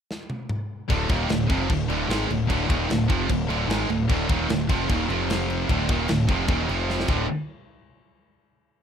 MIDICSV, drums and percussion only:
0, 0, Header, 1, 2, 480
1, 0, Start_track
1, 0, Key_signature, -1, "minor"
1, 0, Tempo, 399467
1, 1081, Time_signature, 4, 2, 24, 8
1, 10607, End_track
2, 0, Start_track
2, 0, Title_t, "Drums"
2, 128, Note_on_c, 9, 38, 72
2, 248, Note_off_c, 9, 38, 0
2, 356, Note_on_c, 9, 48, 81
2, 476, Note_off_c, 9, 48, 0
2, 594, Note_on_c, 9, 47, 92
2, 714, Note_off_c, 9, 47, 0
2, 1080, Note_on_c, 9, 49, 78
2, 1081, Note_on_c, 9, 36, 110
2, 1200, Note_off_c, 9, 49, 0
2, 1201, Note_off_c, 9, 36, 0
2, 1311, Note_on_c, 9, 49, 73
2, 1318, Note_on_c, 9, 36, 115
2, 1431, Note_off_c, 9, 49, 0
2, 1438, Note_off_c, 9, 36, 0
2, 1554, Note_on_c, 9, 49, 81
2, 1566, Note_on_c, 9, 38, 107
2, 1674, Note_off_c, 9, 49, 0
2, 1686, Note_off_c, 9, 38, 0
2, 1797, Note_on_c, 9, 49, 64
2, 1799, Note_on_c, 9, 36, 112
2, 1918, Note_off_c, 9, 49, 0
2, 1920, Note_off_c, 9, 36, 0
2, 2036, Note_on_c, 9, 49, 91
2, 2040, Note_on_c, 9, 36, 93
2, 2157, Note_off_c, 9, 49, 0
2, 2160, Note_off_c, 9, 36, 0
2, 2279, Note_on_c, 9, 49, 69
2, 2399, Note_off_c, 9, 49, 0
2, 2527, Note_on_c, 9, 49, 90
2, 2539, Note_on_c, 9, 38, 119
2, 2647, Note_off_c, 9, 49, 0
2, 2659, Note_off_c, 9, 38, 0
2, 2769, Note_on_c, 9, 49, 62
2, 2889, Note_off_c, 9, 49, 0
2, 3003, Note_on_c, 9, 36, 97
2, 3009, Note_on_c, 9, 49, 84
2, 3123, Note_off_c, 9, 36, 0
2, 3129, Note_off_c, 9, 49, 0
2, 3243, Note_on_c, 9, 36, 113
2, 3250, Note_on_c, 9, 49, 70
2, 3363, Note_off_c, 9, 36, 0
2, 3370, Note_off_c, 9, 49, 0
2, 3485, Note_on_c, 9, 49, 78
2, 3497, Note_on_c, 9, 38, 111
2, 3605, Note_off_c, 9, 49, 0
2, 3617, Note_off_c, 9, 38, 0
2, 3722, Note_on_c, 9, 36, 105
2, 3724, Note_on_c, 9, 49, 54
2, 3842, Note_off_c, 9, 36, 0
2, 3844, Note_off_c, 9, 49, 0
2, 3960, Note_on_c, 9, 36, 97
2, 3960, Note_on_c, 9, 49, 87
2, 4080, Note_off_c, 9, 36, 0
2, 4081, Note_off_c, 9, 49, 0
2, 4207, Note_on_c, 9, 49, 64
2, 4327, Note_off_c, 9, 49, 0
2, 4446, Note_on_c, 9, 49, 81
2, 4458, Note_on_c, 9, 38, 117
2, 4566, Note_off_c, 9, 49, 0
2, 4578, Note_off_c, 9, 38, 0
2, 4683, Note_on_c, 9, 49, 58
2, 4804, Note_off_c, 9, 49, 0
2, 4922, Note_on_c, 9, 36, 105
2, 4922, Note_on_c, 9, 49, 81
2, 5042, Note_off_c, 9, 36, 0
2, 5042, Note_off_c, 9, 49, 0
2, 5160, Note_on_c, 9, 36, 115
2, 5162, Note_on_c, 9, 49, 64
2, 5281, Note_off_c, 9, 36, 0
2, 5282, Note_off_c, 9, 49, 0
2, 5399, Note_on_c, 9, 49, 81
2, 5411, Note_on_c, 9, 38, 112
2, 5519, Note_off_c, 9, 49, 0
2, 5531, Note_off_c, 9, 38, 0
2, 5641, Note_on_c, 9, 36, 102
2, 5643, Note_on_c, 9, 49, 66
2, 5761, Note_off_c, 9, 36, 0
2, 5763, Note_off_c, 9, 49, 0
2, 5878, Note_on_c, 9, 49, 85
2, 5883, Note_on_c, 9, 36, 105
2, 5998, Note_off_c, 9, 49, 0
2, 6003, Note_off_c, 9, 36, 0
2, 6127, Note_on_c, 9, 49, 62
2, 6247, Note_off_c, 9, 49, 0
2, 6366, Note_on_c, 9, 49, 90
2, 6378, Note_on_c, 9, 38, 118
2, 6486, Note_off_c, 9, 49, 0
2, 6498, Note_off_c, 9, 38, 0
2, 6607, Note_on_c, 9, 49, 64
2, 6727, Note_off_c, 9, 49, 0
2, 6842, Note_on_c, 9, 36, 100
2, 6849, Note_on_c, 9, 49, 81
2, 6962, Note_off_c, 9, 36, 0
2, 6969, Note_off_c, 9, 49, 0
2, 7079, Note_on_c, 9, 36, 114
2, 7080, Note_on_c, 9, 49, 68
2, 7199, Note_off_c, 9, 36, 0
2, 7200, Note_off_c, 9, 49, 0
2, 7308, Note_on_c, 9, 49, 77
2, 7320, Note_on_c, 9, 38, 110
2, 7428, Note_off_c, 9, 49, 0
2, 7440, Note_off_c, 9, 38, 0
2, 7554, Note_on_c, 9, 36, 102
2, 7557, Note_on_c, 9, 49, 63
2, 7674, Note_off_c, 9, 36, 0
2, 7677, Note_off_c, 9, 49, 0
2, 7786, Note_on_c, 9, 49, 79
2, 7793, Note_on_c, 9, 36, 116
2, 7906, Note_off_c, 9, 49, 0
2, 7913, Note_off_c, 9, 36, 0
2, 8040, Note_on_c, 9, 49, 61
2, 8160, Note_off_c, 9, 49, 0
2, 8291, Note_on_c, 9, 38, 70
2, 8409, Note_off_c, 9, 38, 0
2, 8409, Note_on_c, 9, 38, 74
2, 8506, Note_on_c, 9, 57, 84
2, 8513, Note_on_c, 9, 36, 96
2, 8529, Note_off_c, 9, 38, 0
2, 8626, Note_off_c, 9, 57, 0
2, 8634, Note_off_c, 9, 36, 0
2, 10607, End_track
0, 0, End_of_file